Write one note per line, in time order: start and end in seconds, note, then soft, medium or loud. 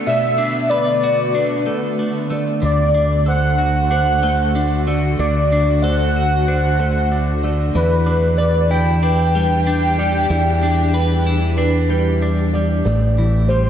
0.00 7.71 D3 medium
0.00 1.66 A3 soft
0.00 7.71 A3 medium
0.00 2.59 B3 medium
0.00 0.38 D4 soft
0.00 1.03 F#4 soft
0.06 1.67 B2 medium
0.06 0.71 D5 medium
0.06 0.71 E5 loud
0.38 1.34 D4 soft
0.70 1.34 B4 medium
0.70 2.31 B4 soft
0.70 1.98 D5 medium
1.04 3.58 F#4 soft
1.35 1.99 D4 soft
1.35 1.66 B4 medium
1.66 2.30 A3 soft
1.66 2.31 B4 medium
1.99 2.94 D4 soft
2.30 4.23 A3 soft
2.30 2.62 D5 medium
2.62 5.15 D2 medium
2.62 4.23 D3 soft
2.62 7.70 F#4 medium
2.62 3.27 D5 medium
2.62 3.23 D5 medium
2.95 3.90 D4 soft
3.26 4.87 A4 soft
3.26 3.90 C5 medium
3.26 3.88 F#5 medium
3.58 5.19 F#4 soft
3.90 4.55 D4 soft
3.90 4.21 C5 medium
3.90 4.82 F#5 medium
4.23 4.86 A3 soft
4.23 4.87 C5 medium
4.55 5.52 D4 soft
4.87 6.47 A3 soft
4.87 5.18 D5 medium
5.19 7.71 D2 medium
5.19 6.79 D3 medium
5.19 5.84 D5 medium
5.19 5.83 D5 medium
5.52 6.48 D4 soft
5.82 7.43 A4 medium
5.82 6.46 C5 medium
5.82 6.45 F#5 medium
6.16 7.76 F#4 soft
6.46 7.11 D4 soft
6.46 6.77 C5 medium
6.46 7.38 F#5 medium
6.79 7.43 A3 soft
6.79 7.43 C5 soft
7.12 7.78 D4 soft
7.43 7.75 A3 soft
7.43 7.74 D5 medium
7.73 10.26 E2 medium
7.73 12.81 E3 medium
7.73 9.70 E3 medium
7.73 12.81 D4 medium
7.73 12.81 G4 medium
7.73 8.39 B4 medium
7.73 8.39 D5 medium
8.06 9.01 D4 soft
8.38 9.98 B4 medium
8.38 9.01 B4 medium
8.38 8.70 D5 medium
8.71 10.66 E4 medium
8.71 12.18 G5 medium
9.03 9.66 D4 medium
9.03 9.33 B4 medium
9.34 9.98 G3 soft
9.34 9.98 B4 medium
9.67 10.62 D4 soft
9.98 11.58 G3 medium
9.98 10.29 D5 medium
10.30 12.81 E2 medium
10.30 11.90 E3 medium
10.30 10.94 D5 medium
10.63 11.57 D4 medium
10.93 11.55 B4 medium
10.93 12.54 B4 medium
11.27 12.86 E4 soft
11.57 12.21 D4 medium
11.57 11.87 B4 medium
11.89 12.54 G3 medium
11.89 12.53 B4 medium
12.22 12.86 D4 soft
12.53 12.86 G3 medium
12.53 12.84 D5 medium
12.84 13.70 A1 medium
12.84 13.70 A2 medium
12.84 13.70 A3 medium
12.84 13.70 G4 medium
12.84 13.70 C5 medium
12.84 13.49 D5 medium
13.18 13.70 E3 medium
13.48 13.70 G3 medium
13.48 13.70 C5 medium